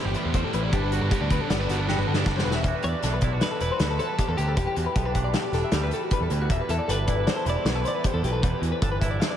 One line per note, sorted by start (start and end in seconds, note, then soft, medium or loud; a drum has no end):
0.00 0.34 E2 medium
0.00 0.32 A2 medium
0.00 0.32 E3 medium
0.00 0.70 E3 medium
0.00 1.30 G3 medium
0.00 0.17 A3 medium
0.00 0.16 B3 medium
0.00 0.15 C4 medium
0.00 0.13 E4 medium
0.05 0.14 G1 medium
0.05 0.53 G4 soft
0.05 0.16 G4 medium
0.14 0.34 A3 medium
0.14 0.37 B3 medium
0.14 0.34 C4 medium
0.14 0.35 E4 medium
0.14 0.25 B4 medium
0.14 closed hi-hat medium
0.25 0.43 E2 medium
0.25 0.35 G4 medium
0.33 0.71 A2 medium
0.33 0.72 A2 medium
0.33 0.71 E3 medium
0.33 0.72 A3 medium
0.33 0.72 C4 medium
0.33 0.72 E4 medium
0.33 0.44 C5 medium
0.33 kick medium
0.33 closed hi-hat medium
0.44 0.54 A4 medium
0.53 0.71 A1 medium
0.53 0.73 E4 medium
0.53 0.63 B4 medium
0.53 closed hi-hat medium
0.63 0.72 D5 medium
0.71 0.99 G1 medium
0.71 1.30 G2 medium
0.71 1.68 G2 medium
0.71 1.09 D3 medium
0.71 1.10 G3 loud
0.71 1.10 B3 medium
0.71 1.10 D4 medium
0.71 1.11 D4 medium
0.71 0.82 G4 medium
0.71 kick medium
0.71 closed hi-hat medium
0.83 0.92 B4 medium
0.92 1.01 F#4 medium
0.92 1.87 F#4 medium
0.92 closed hi-hat medium
1.01 1.11 G1 medium
1.01 1.11 A4 medium
1.10 2.66 D3 medium
1.10 1.46 D3 medium
1.10 1.48 G3 medium
1.10 1.21 B3 soft
1.10 1.49 B3 medium
1.10 1.50 D4 medium
1.10 1.21 G4 medium
1.10 kick loud
1.10 closed hi-hat medium
1.21 1.38 D2 medium
1.21 1.50 D4 soft
1.21 1.31 D5 medium
1.30 1.49 B3 soft
1.30 1.41 B4 medium
1.30 kick medium
1.30 closed hi-hat medium
1.41 1.50 A4 medium
1.47 1.68 G1 medium
1.47 1.87 D3 medium
1.47 1.70 G3 medium
1.47 1.69 B3 medium
1.47 1.60 B3 medium
1.47 1.67 D4 medium
1.47 1.59 D5 medium
1.47 snare medium
1.47 closed hi-hat medium
1.60 2.07 D4 soft
1.60 1.69 B4 medium
1.68 1.95 G1 medium
1.68 2.26 G2 medium
1.68 1.88 G3 medium
1.68 2.06 B3 medium
1.68 1.88 B3 medium
1.68 1.89 D4 medium
1.68 1.79 F#4 medium
1.68 snare soft
1.68 closed hi-hat medium
1.79 1.88 A4 medium
1.87 2.23 G2 medium
1.87 2.24 D3 medium
1.87 2.08 G3 medium
1.87 2.07 B3 loud
1.87 2.06 D4 medium
1.87 2.46 F#4 medium
1.87 1.98 G4 medium
1.87 snare medium
1.98 2.06 G1 medium
1.98 2.07 B4 medium
2.07 2.24 G1 medium
2.07 2.25 G3 medium
2.07 2.18 B3 medium
2.07 2.26 B3 medium
2.07 2.27 D4 medium
2.07 2.17 A4 medium
2.14 2.27 D4 soft
2.14 2.27 G4 medium
2.14 snare medium
2.25 2.43 F#1 medium
2.25 2.63 G2 medium
2.25 2.63 D3 medium
2.25 2.64 G3 medium
2.25 2.64 B3 medium
2.25 2.64 D4 medium
2.25 2.63 D4 soft
2.25 2.36 A4 medium
2.25 kick medium
2.25 snare medium
2.36 2.45 C5 medium
2.36 snare medium
2.45 2.63 E1 medium
2.45 2.63 F#4 medium
2.45 2.55 B4 medium
2.51 2.63 E5 medium
2.51 snare medium
2.64 2.73 E1 medium
2.64 4.20 E2 medium
2.64 2.85 E3 medium
2.64 3.82 G3 medium
2.64 3.05 D4 medium
2.64 2.74 E5 medium
2.64 kick medium
2.64 closed hi-hat medium
2.68 3.23 F#4 medium
2.75 2.85 B4 medium
2.83 2.93 E2 medium
2.83 4.00 E3 medium
2.83 3.42 D5 medium
2.83 2.94 E5 medium
2.83 closed hi-hat soft
2.94 3.03 D5 medium
3.03 3.21 B1 medium
3.03 4.61 D4 soft
3.03 3.13 A4 medium
3.03 snare soft
3.03 closed hi-hat medium
3.14 3.22 B4 medium
3.21 3.40 B1 medium
3.21 3.33 E4 medium
3.21 3.33 D5 medium
3.21 kick medium
3.21 closed hi-hat medium
3.33 3.61 F#4 soft
3.33 3.42 B4 medium
3.41 4.00 B2 medium
3.41 3.60 B4 medium
3.41 3.51 D5 medium
3.41 snare medium
3.41 closed hi-hat medium
3.51 3.61 A4 medium
3.61 3.70 E1 medium
3.61 3.73 E4 medium
3.61 3.71 B4 medium
3.61 4.01 B4 medium
3.61 closed hi-hat medium
3.71 4.59 F#4 soft
3.71 3.80 C5 medium
3.80 3.98 D2 medium
3.80 5.74 G3 medium
3.80 3.90 D5 medium
3.80 snare medium
3.80 closed hi-hat medium
3.90 3.99 A4 medium
3.99 4.38 E3 medium
3.99 4.35 A4 medium
3.99 4.09 C5 medium
3.99 closed hi-hat medium
4.09 4.18 B4 medium
4.19 4.58 E2 medium
4.19 4.29 G4 medium
4.19 kick medium
4.19 closed hi-hat medium
4.28 4.37 E2 medium
4.28 4.38 A4 medium
4.37 4.56 D2 medium
4.37 4.76 E3 medium
4.37 4.56 G4 medium
4.37 4.48 G4 medium
4.37 closed hi-hat medium
4.48 4.57 A4 medium
4.57 4.66 E1 medium
4.57 6.11 E2 medium
4.57 6.08 G4 medium
4.57 4.67 B4 medium
4.57 kick medium
4.57 closed hi-hat medium
4.67 4.77 G4 medium
4.76 4.86 E2 medium
4.76 5.93 E3 medium
4.76 4.86 F#4 medium
4.76 closed hi-hat medium
4.86 4.96 B4 medium
4.96 5.14 B1 medium
4.96 5.05 B3 soft
4.96 5.05 A4 medium
4.96 kick medium
4.96 closed hi-hat medium
5.05 5.15 D4 soft
5.05 5.14 B4 medium
5.15 5.33 B1 medium
5.15 5.54 D4 soft
5.15 5.24 F#5 medium
5.15 kick medium
5.15 closed hi-hat medium
5.24 5.34 D5 medium
5.34 5.93 B2 medium
5.34 5.44 E5 medium
5.34 snare loud
5.34 closed hi-hat medium
5.44 5.54 D5 medium
5.52 5.62 E1 medium
5.52 6.53 D4 medium
5.52 5.64 A4 medium
5.52 snare soft
5.52 closed hi-hat soft
5.64 5.74 E5 medium
5.72 5.90 D2 medium
5.72 7.67 G3 medium
5.72 5.83 D5 medium
5.72 snare loud
5.72 closed hi-hat medium
5.83 5.93 B4 medium
5.91 6.31 E3 medium
5.91 6.03 A4 medium
5.91 closed hi-hat medium
6.03 6.13 F#4 medium
6.11 6.50 E2 medium
6.11 6.22 B4 medium
6.11 kick medium
6.11 closed hi-hat medium
6.20 6.29 E2 medium
6.20 6.32 A4 medium
6.30 6.48 D2 medium
6.30 6.69 E3 medium
6.30 6.41 B4 medium
6.30 closed hi-hat medium
6.42 6.51 F#4 medium
6.50 6.59 E1 medium
6.50 7.27 E2 medium
6.50 6.61 E5 medium
6.50 kick medium
6.50 closed hi-hat medium
6.61 6.70 B4 medium
6.69 6.78 E2 medium
6.69 7.86 E3 medium
6.69 6.90 A4 medium
6.69 6.78 E5 medium
6.69 closed hi-hat medium
6.79 6.89 D5 medium
6.88 7.07 G1 medium
6.88 8.48 D4 medium
6.88 6.98 A4 medium
6.88 7.29 B4 medium
6.88 closed hi-hat medium
6.98 7.07 B4 medium
7.07 7.26 G1 medium
7.07 7.47 E4 medium
7.07 7.17 D5 medium
7.07 kick medium
7.07 closed hi-hat medium
7.17 7.26 B4 medium
7.27 8.05 E2 medium
7.27 7.49 C5 medium
7.27 7.36 D5 medium
7.27 snare medium
7.27 closed hi-hat medium
7.36 7.45 A4 medium
7.45 7.55 E1 medium
7.45 9.02 E4 medium
7.45 7.56 B4 medium
7.45 closed hi-hat medium
7.50 7.69 D5 medium
7.56 7.65 C5 medium
7.65 7.83 B1 medium
7.65 9.37 B3 medium
7.65 7.75 D5 medium
7.65 snare loud
7.65 closed hi-hat medium
7.69 7.87 B4 medium
7.75 7.85 A4 medium
7.85 8.25 E3 medium
7.85 7.94 C5 medium
7.85 8.06 D5 medium
7.85 closed hi-hat medium
7.95 8.05 B4 medium
8.04 8.43 E2 medium
8.04 8.13 G4 medium
8.04 8.26 C5 medium
8.04 kick medium
8.04 closed hi-hat medium
8.14 8.22 E2 medium
8.14 8.24 A4 medium
8.23 8.41 B1 medium
8.23 8.62 E3 medium
8.23 8.32 G4 medium
8.23 9.02 B4 medium
8.23 closed hi-hat medium
8.33 8.43 A4 medium
8.43 8.52 E1 medium
8.43 9.19 E2 medium
8.43 8.53 B4 medium
8.43 kick medium
8.43 closed hi-hat medium
8.53 8.62 G4 medium
8.62 8.71 E2 medium
8.62 9.37 E3 medium
8.62 8.72 F#4 medium
8.62 closed hi-hat medium
8.72 8.82 B4 medium
8.82 9.00 G1 medium
8.82 9.37 D4 medium
8.82 8.91 A4 medium
8.82 kick medium
8.82 closed hi-hat medium
8.92 9.01 B4 medium
9.01 9.19 G1 medium
9.01 9.37 E4 medium
9.01 9.10 E5 medium
9.01 kick medium
9.01 closed hi-hat medium
9.11 9.20 D5 medium
9.20 9.37 E2 medium
9.20 9.30 E5 medium
9.20 snare loud
9.20 closed hi-hat medium
9.31 9.37 D5 medium